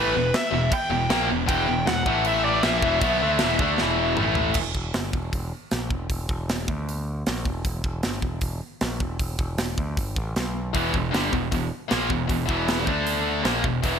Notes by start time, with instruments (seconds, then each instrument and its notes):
Already playing: picked electric bass A1, distorted electric guitar A2 E3 A3, lead electric guitar B4
0.14 picked electric bass E1, distorted electric guitar E2 B2
0.34 lead electric guitar E5, snare, crash
0.51 picked electric bass E1, distorted electric guitar E2 B2
0.70 lead electric guitar G5, muted distorted electric guitar stroke, kick, crash
0.90 picked electric bass E1, distorted electric guitar E2 B2
1.10 picked electric bass A#1, distorted electric guitar A#2 F3 A#3, snare, crash
1.27 picked electric bass E1, distorted electric guitar E2 B2
1.46 picked electric bass E1, distorted electric guitar E2 B2 E3, lead electric guitar G5, kick, crash
1.67 picked electric bass E1, distorted electric guitar E2 B2
1.86 picked electric bass E1, distorted electric guitar E2 B2, lead electric guitar F#5, snare, crash
2.06 picked electric bass A1, distorted electric guitar A2 E3 A3, kick
2.25 lead electric guitar E5, crash
2.45 lead electric guitar D5
2.63 picked electric bass A#1, distorted electric guitar A#2 F3 A#3, lead electric guitar E5, snare, crash
2.82 picked electric bass E1, distorted electric guitar E2 B2 E3, kick
3.01 picked electric bass B1, distorted electric guitar B2 F#3 B3, kick, crash
3.21 picked electric bass D2, distorted electric guitar D3 A3 D4
3.39 picked electric bass E1, distorted electric guitar E2 B2 E3, snare, crash
3.59 picked electric bass D2, distorted electric guitar D3 A3 D4, kick
3.78 picked electric bass E1, distorted electric guitar E2 B2 E3, snare
4.16 picked electric bass A1, distorted electric guitar A2 E3 A3, mid tom
4.35 floor tom
4.54 picked electric bass E1, kick, crash
4.75 picked electric bass E1, kick
4.94 picked electric bass G1, snare, open hi-hat
5.13 picked electric bass E1, kick
5.33 picked electric bass E1, kick, open hi-hat
5.71 picked electric bass A#1, snare, open hi-hat
5.90 picked electric bass E1, kick
6.10 picked electric bass E1, kick, open hi-hat
6.29 picked electric bass E1, kick
6.49 snare, open hi-hat
6.68 picked electric bass D2, kick
6.89 open hi-hat
7.26 picked electric bass A#1, snare, open hi-hat
7.45 picked electric bass E1, kick
7.65 picked electric bass E1, kick, open hi-hat
7.84 picked electric bass E1, kick
8.03 picked electric bass G1, snare, open hi-hat
8.22 picked electric bass E1, kick
8.41 picked electric bass E1, kick, open hi-hat
8.81 picked electric bass A#1, snare, open hi-hat
9.00 picked electric bass E1, kick
9.19 picked electric bass E1, kick, open hi-hat
9.39 picked electric bass E1, kick
9.58 snare, open hi-hat
9.78 picked electric bass D2, kick
9.97 picked electric bass G1, kick, open hi-hat
10.16 picked electric bass A1, kick
10.36 picked electric bass B1, snare, open hi-hat
10.73 picked electric bass E1, distorted electric guitar E2 B2 E3, kick, open hi-hat
10.93 picked electric bass E1, distorted electric guitar E2 B2, kick
11.11 picked electric bass G1, distorted electric guitar G2 D3 G3, snare, open hi-hat
11.32 picked electric bass E1, distorted electric guitar E2 B2, kick
11.51 picked electric bass E1, distorted electric guitar E2 B2, kick, open hi-hat
11.88 picked electric bass A#1, distorted electric guitar A#2 F3 A#3, snare, open hi-hat
12.09 picked electric bass E1, distorted electric guitar E2 B2, kick
12.27 picked electric bass E1, distorted electric guitar E2 B2, kick, open hi-hat
12.46 picked electric bass E1, distorted electric guitar E2 B2 E3, kick
12.50 distorted electric guitar E2 B2
12.68 snare, open hi-hat
12.84 picked electric bass D2, distorted electric guitar D3 A3 D4, kick
13.07 open hi-hat
13.42 picked electric bass A#1, distorted electric guitar A#2 F3 A#3, snare, open hi-hat
13.63 picked electric bass E1, distorted electric guitar E2 B2, kick
13.82 picked electric bass E1, distorted electric guitar E2 B2 E3, kick, open hi-hat